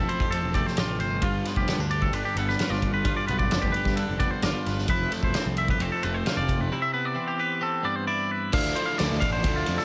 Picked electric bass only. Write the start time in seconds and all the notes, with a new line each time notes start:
0.20 F2
0.43 E1
0.78 A1
0.99 G1
1.22 G1
1.56 F1
1.78 D2
2.12 G1
2.35 G1
2.70 G1
2.92 G1
3.29 B1
3.51 F1
3.85 G2
4.08 F1
4.43 G1
4.67 G1
4.89 F1
5.23 E1
5.46 C2
5.80 F1
6.04 F1
6.37 F1
6.59 F1
8.53 D2
9.00 D2
9.12 D2
9.22 A1
9.44 D2
9.68 F2